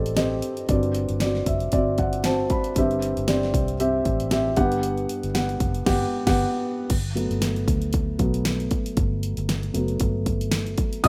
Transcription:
Already playing: fingered electric bass A1, felt piano G2 C4 G4 A4 D5 D#5
0.06 closed hi-hat
0.17 felt piano C4 G4 D#5, snare, closed hi-hat
0.42 closed hi-hat
0.57 closed hi-hat
0.69 fingered electric bass G1, felt piano G2 C4 F#4 D5, kick, closed hi-hat
0.83 closed hi-hat
0.95 closed hi-hat
1.09 fingered electric bass G1, closed hi-hat
1.20 felt piano C4 F#4 D5, snare, closed hi-hat
1.35 snare
1.46 fingered electric bass F#1, felt piano E5, kick, closed hi-hat
1.60 closed hi-hat
1.72 fingered electric bass G1, felt piano C4 F#4 D5 E5, kick, closed hi-hat
1.98 felt piano F#5, kick, closed hi-hat
2.13 closed hi-hat
2.24 felt piano C4 F#4 C5 A5, snare, closed hi-hat
2.50 felt piano B5, kick, closed hi-hat
2.64 closed hi-hat
2.76 fingered electric bass G1, felt piano G2 C4 G4 E5, kick, closed hi-hat
2.91 closed hi-hat
3.02 closed hi-hat
3.17 fingered electric bass G1, closed hi-hat
3.28 felt piano C4 G4 D5, snare, closed hi-hat
3.43 snare
3.54 fingered electric bass C2, kick, closed hi-hat
3.68 closed hi-hat
3.80 felt piano C4 G4 E5, closed hi-hat
4.05 fingered electric bass A1, kick, closed hi-hat
4.20 closed hi-hat
4.31 felt piano C4 G4 E5, snare, closed hi-hat
4.56 fingered electric bass G1, felt piano G2 B3 G4 F#5, kick, closed hi-hat
4.72 closed hi-hat
4.83 closed hi-hat
4.98 closed hi-hat
5.09 closed hi-hat
5.23 fingered electric bass G1, closed hi-hat
5.34 felt piano B3 G4 F#5, snare, closed hi-hat
5.49 closed hi-hat
5.60 fingered electric bass F#1, kick, closed hi-hat
5.75 closed hi-hat
5.86 fingered electric bass G1, felt piano B3 G4 F#5, kick, snare, crash
6.27 fingered electric bass G1, felt piano B3 G4 F#5, kick, snare, crash
6.90 fingered electric bass G1, kick, closed hi-hat, crash
7.15 felt piano F#3 A3 B3, closed hi-hat
7.31 fingered electric bass G1, closed hi-hat
7.42 snare, closed hi-hat
7.56 closed hi-hat
7.68 fingered electric bass D2, kick, closed hi-hat
7.82 closed hi-hat
7.93 kick, closed hi-hat
8.19 fingered electric bass B1, felt piano F#3 A3 B3, kick, closed hi-hat
8.34 closed hi-hat
8.45 snare, closed hi-hat
8.60 closed hi-hat
8.71 kick, closed hi-hat
8.86 closed hi-hat
8.97 fingered electric bass G1, kick, closed hi-hat
9.23 closed hi-hat
9.37 fingered electric bass G1, closed hi-hat
9.49 snare, closed hi-hat
9.63 closed hi-hat
9.74 fingered electric bass F#1, felt piano F#3 A3 B3, closed hi-hat
9.88 closed hi-hat
10.00 fingered electric bass G1, kick, closed hi-hat
10.26 kick, closed hi-hat
10.41 closed hi-hat
10.52 snare, closed hi-hat
10.67 closed hi-hat
10.78 kick, closed hi-hat
10.93 closed hi-hat
11.04 fingered electric bass G1, felt piano D#3 G3 D#6, kick, crash, ride

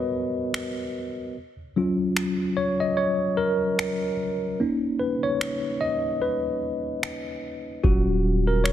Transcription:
Already playing: tine electric piano B3 F#4 A#4 B4 C#5 D#5
0.54 finger snap
1.76 tine electric piano F#3 C#4 F4
2.17 finger snap
2.57 tine electric piano C#5
2.80 tine electric piano D#5
2.97 tine electric piano C#5
3.37 tine electric piano A#4
3.79 finger snap
4.60 tine electric piano A#3 C#4 D#4
4.99 tine electric piano B4
5.23 tine electric piano C#5
5.41 finger snap
5.81 tine electric piano D#5
6.22 tine electric piano B4
7.03 finger snap
7.84 808-style bass D#1, tine electric piano F#3 C#4 F4 F#4, kick
8.47 tine electric piano A#4
8.64 tine electric piano C#5, finger snap

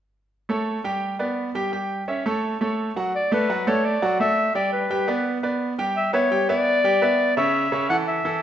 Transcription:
0.49 grand piano A3 A4 C#5
0.84 grand piano G3 G4 G5
1.19 grand piano B3 B4 D5
1.55 grand piano G3 G4 G5
1.72 grand piano G3 G4 G5
2.08 grand piano C#4 C#5 E5
2.26 grand piano A3 A4 C#5
2.61 grand piano A3 A4 C#5
2.96 grand piano F#3 F#4 F#5
3.15 clarinet D5
3.32 grand piano A3 A4 D5, clarinet B4
3.49 grand piano F#3 F#4 F#5
3.67 grand piano A3 A4 D5, clarinet C#5
3.85 clarinet D5
4.02 grand piano F#3 F#4 F#5
4.20 grand piano A3 A4 D5, clarinet E5
4.55 grand piano G3 G4 G5, clarinet D5
4.73 clarinet B4
4.90 grand piano G3 G4 G5
5.08 grand piano B3 B4 D5
5.43 grand piano B3 B4 D5
5.78 grand piano G3 G4 G5
5.97 clarinet E5
6.13 grand piano B3 B4 E5, clarinet C#5
6.31 grand piano G3 G4 G5
6.49 grand piano B3 B4 E5, clarinet D5
6.84 grand piano G3 G4 G5
7.02 grand piano B3 B4 E5
7.37 grand piano C#3 C#4 C#5, clarinet E5
7.72 grand piano C#3 C#4 C#5
7.90 grand piano E3 E4 A4, clarinet F#5
8.08 clarinet E5
8.25 grand piano E3 E4 A4

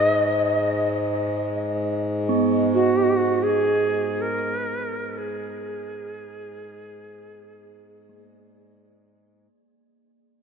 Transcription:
Already playing: harmonium G#2, native american-style wooden flute D#5
2.29 singing bowl B3
2.75 native american-style wooden flute F#4
3.43 native american-style wooden flute G#4
4.21 native american-style wooden flute A#4
5.18 native american-style wooden flute G#4
8.09 singing bowl A#3

